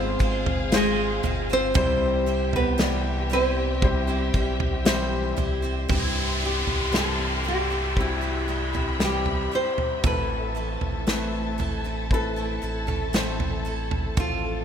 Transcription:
Already playing: G#1 G#2 G#3 C4 F4 G#4 C5 F5
0.19 G#1 G#3 C4 F4 C5, kick
0.46 floor tom
0.72 G#3 C4 F4 G#4 C5, snare
1.23 G1 G#3 C4 F4 C5, floor tom
1.50 C4 F4 C5
1.74 C2 C3 E3 G3 C4 E4 G4 C5 E5, kick, floor tom
2.26 G3 C4 E4 C5
2.53 B3 B4, floor tom
2.78 C3 E3 G3 E4 G4 D5, snare
3.30 G3 C4 E4 C5
3.82 G3 C4 E4 G4 C5, kick, floor tom
4.07 G3 C4 E4 C5
4.34 B1 G3 C4 E4 C5, kick
4.60 floor tom
4.85 E3 G3 C4 E4 G4 C5, snare
5.36 C2 G3 C4 E4 C5, floor tom
5.62 G3 C4 E4 C5
5.88 C2 G2 C3 E3 G3 C4 E4 G4 C5 E5 C6, kick, floor tom, downlifter
5.93 E4
6.40 G3 C4 E4 C5
6.45 G4
6.67 C2, floor tom
6.92 C3 E3 G3 C4 E4 A4 C5, snare
6.97 A4
7.44 G3 C4 E4 C5
7.48 G4
7.70 G3 C4 E4 C5
7.96 G3 C4 E4 F#4 B5, kick
8.01 E4 G4
8.21 G3 C4 E4 C5
8.48 G3 C4 E4 C5
8.73 G3 C4 E4 C5, floor tom
8.99 C3 E3 G3 C4 E4 G4 C5, snare
9.04 G4
9.26 floor tom
9.51 G3 C4 E4 C5
9.78 floor tom
10.03 A1 A2 E3 A3 C4 E4 A4 B4 A5, kick, floor tom
10.55 A3 C4 E4 A4
10.81 A1, floor tom
11.07 A2 E3 A3 C4 E4 A4 B4, snare
11.58 A3 C4 E4 A4, floor tom
11.84 A3 C4 E4 A4
12.11 A3 C4 E4 A4 B4, kick
12.36 A3 C4 E4 A4
12.62 A1 A3 C4 E4 A4
12.87 A3 C4 E4 A4, floor tom
13.13 A2 E3 A3 C4 E4 A4 C5, snare
13.40 floor tom
13.65 A3 C4 E4 A4
13.91 floor tom
14.17 A1 A2 F3 A3 C4 F4 A4, kick, floor tom

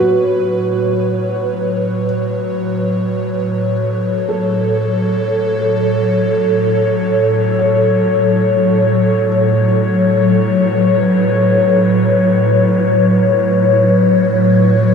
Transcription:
Already playing: A2 F#3 B4 C#5
0.00 F#4
3.75 A4
4.29 A4
7.59 C#5
10.61 B4

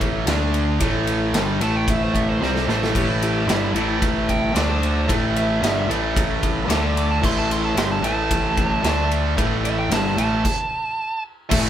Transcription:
Already playing: A1 A2 E3 A3
0.01 kick, ride
0.27 D2 D3 A3 D4, snare, ride
0.54 ride
0.80 A1 A2 E3 A3, kick, ride
1.07 ride
1.33 G1 G2 D3 G3, snare, ride
1.61 A1 A2 E3 A3 A5, ride
1.76 G5
1.88 E5, kick, ride
2.03 C5
2.15 E5, kick, ride
2.28 C5
2.41 C2 C3 G3 C4 C5, snare
2.55 A4, snare
2.67 A1 A2 E3 A3 C5, snare
2.83 A4, snare
2.94 A1 A2 E3 A3 E4 G4 B4, kick, crash
3.09 E4
3.23 G4, ride
3.47 G1 G2 D3 G3 E4, snare, ride
3.74 A1 A2 E3 A3, ride
4.02 kick, ride
4.29 G5, kick, ride
4.54 D2 D3 A3 D4 A4 D5 E5, snare, ride
4.70 C5
4.83 ride
5.08 A1 A2 E3 A3 E4 B4, kick, ride
5.36 E5, ride
5.61 G1 G2 D3 G3, snare, ride
5.88 A1 A2 E3 A3, ride
6.16 kick, ride
6.43 kick, ride
6.68 D2 D3 A3 D4 A4 E5, snare, ride
6.97 D6, ride
7.11 A5
7.22 A1 A2 E3 A3 E4 B4 C6, kick, crash
7.38 A5
7.51 C6, ride
7.65 A5
7.75 G1 G2 D3 G3 C6, snare, ride
7.92 A5
8.02 A1 A2 E3 A3, ride
8.06 A5
8.31 kick, ride
8.57 kick, ride
8.82 D2 D3 A3 D4 A4 E5, snare, ride
9.12 ride
9.37 A1 A2 E3 A3 E4 B4, kick, ride
9.65 E5, ride
9.79 G5
9.90 G1 G2 D3 G3 A5, snare, ride
10.07 snare
10.16 A1 A2 E3 A3 A5, ride
10.45 kick, crash
11.49 A1 A2 E3 A3 E4 B4, kick, crash

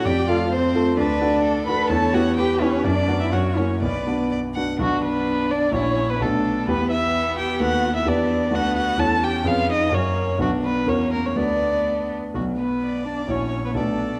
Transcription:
0.04 F2 G4 D5 G5
0.28 A3 F4 A4 F5
0.50 C4 C5
0.75 A3 F4 A4
0.97 D2 D4 B4 D5
1.21 D4 F#4 A4
1.44 A4
1.67 D4 F#4 A4 B4 B5
1.89 E2 A4 C#5 A5
2.14 B3 E4 F#4 G4 F#5
2.37 G4 B4 G5
2.60 B3 C#4 E4 G4 C#5
2.84 F#2 D4 D5
3.08 B3 D4 F#4
3.20 E4 E5
3.32 F#2 F#4 C#5 F#5
3.57 A#3 C#4 E4 F#4 C#5
3.82 B1 B3 B4 D5
4.07 B3 D4 F#4
4.31 D5
4.55 B3 D4 F#4 F#5
4.79 B1 F#3 B3 D4 F#4
5.04 B3 B4
5.51 D4 D5
5.72 A#1 C#4 E4 F#4 C#5
6.10 B3 B4
6.20 B1 A3 D4 F#4 A4 B4
6.24 D4
6.67 E2 B3 G4 B4
6.92 E4 E5
7.38 G4 G5
7.60 D#2 B3 F#4 A4 B4 F#5
7.95 E4 E5
8.05 E2 B3 D4 G4 B4 D5
8.51 D2 D4 F#4 B4
8.55 B3 F#5
8.77 F#4 F#5
8.97 E2 C#4 E4 A4 C#5 A5
9.23 G4 G5
9.44 F2 C#4 F4 G#4 B4 F5
9.49 B3
9.70 D#4 D#5
9.91 F#2 A#3 C#4 F#4 A#4 C#5
10.38 B1 F#3 D4 F#4 B4
10.65 B3 B4
10.86 E2 A#3 C#4 F#4 A#4 C#5
11.13 A#3 A#4
11.26 C#4 C#5
11.36 D2 B3 D4 F#4 B4 D5
12.34 B1 F#3 B3 F#4 D5
12.59 B3 B4
12.83 D5
13.05 D4 D5
13.28 A#1 C#4 E4 F#4 C#5
13.65 B3 B4
13.74 B1 A3 D4 F#4 A4 B4 D5

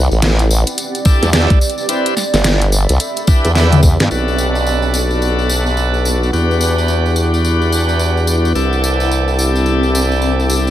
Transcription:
Already playing: C4 E4 B4 D5 F#5
0.11 A1, tambourine
0.17 G4
0.22 snare, closed hi-hat, tambourine
0.39 closed hi-hat, tambourine
0.51 tambourine
0.67 closed hi-hat, tambourine
0.78 closed hi-hat, tambourine
0.95 closed hi-hat, tambourine
1.05 D4 E4 G4 A4, kick, tambourine
1.23 E2, snare, closed hi-hat, tambourine
1.33 D4 E4 G4 A4, snare, closed hi-hat, tambourine
1.50 kick, snare, closed hi-hat, tambourine
1.61 tambourine
1.70 closed hi-hat
1.78 tambourine
1.89 C4 E4 G4 A4 B4, closed hi-hat, tambourine
2.06 E5, closed hi-hat, tambourine
2.17 snare, tambourine
2.34 G1, snare, closed hi-hat, tambourine
2.44 snare, closed hi-hat, tambourine
2.62 closed hi-hat, tambourine
2.72 tambourine
2.89 C2, closed hi-hat, tambourine
3.00 closed hi-hat, tambourine
3.16 closed hi-hat, tambourine
3.27 D4 E4 G4 B4, kick, tambourine
3.45 E2, closed hi-hat, tambourine
3.51 D5
3.55 D4 E4 G4 B4, snare, tambourine
3.72 closed hi-hat, high tom, tambourine
3.83 kick, tambourine
4.00 G2, snare, closed hi-hat, tambourine
4.11 B1 B3 D4 F#4 A4 B4, tambourine
4.28 tambourine
4.38 tambourine
4.55 tambourine
4.67 tambourine
4.82 tambourine
4.94 tambourine
5.11 B4, tambourine
5.22 closed hi-hat, tambourine
5.39 tambourine
5.49 tambourine
5.66 tambourine
5.77 tambourine
5.94 tambourine
6.05 tambourine
6.23 tambourine
6.33 E2 D4 E4 F#4 G4 B4, closed hi-hat, tambourine
6.50 closed hi-hat, tambourine
6.61 tambourine
6.78 tambourine
6.88 tambourine
7.06 tambourine
7.10 F#5
7.16 tambourine
7.29 closed hi-hat
7.33 closed hi-hat, tambourine
7.44 closed hi-hat, tambourine
7.62 tambourine
7.72 tambourine
7.89 tambourine
7.99 tambourine
8.17 tambourine
8.27 tambourine
8.45 closed hi-hat, tambourine
8.55 C2 C4 D4 E4 G4 A4, closed hi-hat, tambourine
8.72 closed hi-hat, tambourine
8.84 tambourine
9.00 D5, tambourine
9.12 G4, tambourine
9.28 tambourine
9.39 tambourine
9.56 tambourine
9.66 closed hi-hat, tambourine
9.83 tambourine
9.95 tambourine
10.12 tambourine
10.22 closed hi-hat, tambourine
10.39 tambourine
10.50 tambourine
10.67 tambourine

